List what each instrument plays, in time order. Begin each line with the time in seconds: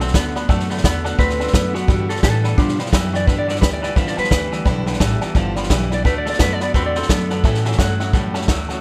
Already playing: upright bass B1
0.00 clean electric guitar D3 C4, steel-string acoustic guitar A3 B3 F#4, honky-tonk piano D5 F#5 A5, snare
0.07 snare
0.14 upright bass D2, steel-string acoustic guitar D3 A3 B3 F#4, clean electric guitar D3 B3, honky-tonk piano D5 F#5 B5, kick, snare, hi-hat pedal
0.35 clean electric guitar D3 B3, steel-string acoustic guitar A3 B3 F#4, honky-tonk piano D5 F#5 B5, snare
0.49 upright bass F#2, steel-string acoustic guitar D3 A3 B3 F#4, clean electric guitar D3 A3, honky-tonk piano D5 F#5 A5, kick, snare
0.60 snare
0.69 clean electric guitar D3 A3, steel-string acoustic guitar A3 B3 F#4, honky-tonk piano D5 F#5 B5, snare
0.77 snare
0.83 upright bass E2, steel-string acoustic guitar D3 A3 B3 F#4, clean electric guitar D3 B3, honky-tonk piano D5 F#5 B5, kick, snare, hi-hat pedal
1.04 clean electric guitar D3 B3, steel-string acoustic guitar A3 B3 F#4, honky-tonk piano D5 F#5 A5, snare
1.18 upright bass D2, steel-string acoustic guitar D3 A3 B3 F#4, clean electric guitar D3 C4 B4, honky-tonk piano D5 F#5 B5, kick, snare
1.29 snare
1.39 clean electric guitar D3 C4, steel-string acoustic guitar A3 B3 F#4, honky-tonk piano D5 F#5 A5, snare
1.47 snare
1.52 upright bass F#2, steel-string acoustic guitar D3 A3 B3 F#4, clean electric guitar D3 B3, honky-tonk piano D5 F#5 A5, kick, snare, hi-hat pedal
1.73 clean electric guitar D3 B3 F#4, steel-string acoustic guitar A3 B3 F#4, honky-tonk piano D5 F#5 A5, snare
1.88 steel-string acoustic guitar G2 D3 E3 G3 B3 E4, upright bass G2, clean electric guitar G2 D3, honky-tonk piano D5 G5 B5, kick, snare
2.08 clean electric guitar G2 D3 A4, steel-string acoustic guitar E3 G3 B3 E4, honky-tonk piano D5 G5 C#6, snare
2.16 snare
2.22 clean electric guitar G2 E3 A4, upright bass A2, steel-string acoustic guitar E3 G3 B3 E4, honky-tonk piano D5 G5 A5, kick, snare, hi-hat pedal
2.44 clean electric guitar G2 E3, steel-string acoustic guitar E3 G3 B3 E4, honky-tonk piano D5 G5 B5, snare
2.58 steel-string acoustic guitar G2 D3 E3 G3 B3 E4, clean electric guitar G2 F3 D4, upright bass B2, honky-tonk piano D5 G5 B5, kick, snare
2.68 snare
2.79 clean electric guitar G2 F3, steel-string acoustic guitar E3 G3 B3 E4, honky-tonk piano D5 G5 B5, snare
2.86 snare
2.92 upright bass F#2, clean electric guitar G2 E3, steel-string acoustic guitar E3 G3 B3 E4, honky-tonk piano D5 G5 B5, kick, snare, hi-hat pedal
3.13 clean electric guitar G2 E3 D5, steel-string acoustic guitar E3 G3 B3 E4, honky-tonk piano D5 G5 C#6, snare
3.27 steel-string acoustic guitar G2 D3 E3 G3 B3 E4, clean electric guitar G2 D3 B4, upright bass G2, honky-tonk piano D5 G5 B5, kick, snare
3.39 clean electric guitar D5
3.47 clean electric guitar G2 D3 D5, steel-string acoustic guitar E3 G3 B3 E4, honky-tonk piano D5 G5 D6, snare
3.56 snare
3.61 upright bass D2, clean electric guitar G2 E3 B4, steel-string acoustic guitar E3 G3 B3 E4, honky-tonk piano D5 G5 B5, kick, snare, hi-hat pedal
3.73 clean electric guitar D5
3.82 clean electric guitar G2 E3 D5, steel-string acoustic guitar E3 G3 B3 E4, honky-tonk piano D5 G5 B5, snare
3.95 upright bass E2, clean electric guitar G2 F3 B4, steel-string acoustic guitar G2 D3 E3 G3 B3 E4, honky-tonk piano D5 G5 B5, kick, snare
4.07 clean electric guitar D5, snare
4.16 clean electric guitar G2 F3 B4, steel-string acoustic guitar E3 G3 B3 E4, honky-tonk piano D5 G5 A5, muted upright bass stroke, snare
4.24 snare
4.30 upright bass D2, clean electric guitar G2 E3, steel-string acoustic guitar E3 G3 B3 E4, honky-tonk piano D5 G5 B5, kick, snare, hi-hat pedal
4.51 clean electric guitar G2 E3, steel-string acoustic guitar E3 G3 B3 E4, honky-tonk piano D5 G5 A5, snare
4.65 upright bass B1, steel-string acoustic guitar G2 D3 E3 G3 B3 E4, clean electric guitar G2 D3, honky-tonk piano D5 G5 B5, kick, snare
4.86 clean electric guitar G2 D3, steel-string acoustic guitar E3 G3 B3 E4, honky-tonk piano D5 G5 B5, snare
4.93 snare
5.00 upright bass A1, clean electric guitar G2 E3, steel-string acoustic guitar E3 G3 B3 E4, honky-tonk piano D5 G5 A5, kick, snare, hi-hat pedal
5.21 clean electric guitar G2 E3, steel-string acoustic guitar E3 G3 B3 E4, honky-tonk piano D5 G5 A5, muted upright bass stroke, snare
5.34 upright bass G1, steel-string acoustic guitar G2 D3 E3 G3 B3 E4, clean electric guitar G2 F3, honky-tonk piano D5 G5 A5, kick, snare
5.56 clean electric guitar G2 F3, steel-string acoustic guitar E3 G3 B3 E4, honky-tonk piano D5 G5 B5, snare
5.63 snare
5.70 upright bass B1, clean electric guitar G2 E3, steel-string acoustic guitar E3 G3 B3 E4, honky-tonk piano D5 G5 B5, kick, snare, hi-hat pedal
5.90 clean electric guitar G2 E3 D5, steel-string acoustic guitar E3 G3 B3 E4, honky-tonk piano D5 G5 B5, snare
6.04 upright bass D2, steel-string acoustic guitar D3 A3 B3 F#4, clean electric guitar D3 A3 B4, honky-tonk piano D5 F#5 A5, kick, snare
6.18 clean electric guitar D5
6.25 clean electric guitar D3 A3, steel-string acoustic guitar A3 B3 F#4, honky-tonk piano D5 F#5 A5, snare
6.30 clean electric guitar D5, snare
6.39 upright bass F#2, clean electric guitar D3 B3 B4, steel-string acoustic guitar D3 A3 B3 F#4, honky-tonk piano D5 F#5 A5, kick, snare, hi-hat pedal
6.53 clean electric guitar D5
6.60 clean electric guitar D3 B3 D5, steel-string acoustic guitar A3 B3 F#4, honky-tonk piano D5 F#5 B5, snare
6.74 upright bass E2, steel-string acoustic guitar D3 A3 B3 F#4, clean electric guitar D3 C4 B4, honky-tonk piano D5 F#5 A5, kick, snare
6.86 clean electric guitar D5
6.95 clean electric guitar D3 C4 A4, steel-string acoustic guitar A3 B3 F#4, honky-tonk piano D5 F#5 B5, snare
7.02 snare
7.09 upright bass F#2, clean electric guitar D3 B3, steel-string acoustic guitar A3 B3 F#4, honky-tonk piano D5 F#5 A5, kick, snare, hi-hat pedal
7.29 clean electric guitar D3 B3, steel-string acoustic guitar A3 B3 F#4, honky-tonk piano D5 F#5 A5, snare
7.44 steel-string acoustic guitar A2 E3 A3 C#4 F#4, upright bass A2, clean electric guitar A2 E3, honky-tonk piano C#5 E5 A5, kick, snare
7.54 snare
7.65 clean electric guitar A2 E3, steel-string acoustic guitar A3 C#4 F#4, honky-tonk piano C#5 E5 A5, snare
7.72 snare
7.78 upright bass G2, clean electric guitar A2 F#3, steel-string acoustic guitar E3 A3 C#4 F#4, honky-tonk piano C#5 E5 F#5, kick, snare, hi-hat pedal
8.00 clean electric guitar A2 F#3, steel-string acoustic guitar A3 C#4 F#4, honky-tonk piano C#5 E5 F#5, snare
8.12 upright bass F#2, steel-string acoustic guitar A2 E3 A3 C#4 F#4, clean electric guitar A2 G3, honky-tonk piano C#5 E5 F#5, kick, snare
8.34 clean electric guitar A2 G3, steel-string acoustic guitar A3 C#4 F#4, honky-tonk piano C#5 E5 A5, snare
8.41 snare
8.47 upright bass D2, clean electric guitar A2 F#3, steel-string acoustic guitar E3 A3 C#4 F#4, honky-tonk piano C#5 E5 A5, kick, snare, hi-hat pedal
8.68 clean electric guitar A2 F#3, steel-string acoustic guitar A3 C#4 F#4, honky-tonk piano C#5 E5 A5, snare